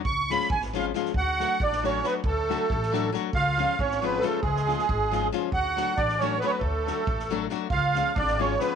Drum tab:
SD |--oo-oo-oo|--o--oo-o-|--o--oo-o-|--o--oo-o-|
BD |o---o-----|o---o-----|o---o-----|o---o-----|

SD |-ooo--o-o-|--o--oo-o-|--o--oo-o-|--o--oo-o-|
BD |o---o-----|o---o-----|o---o-----|o---o-----|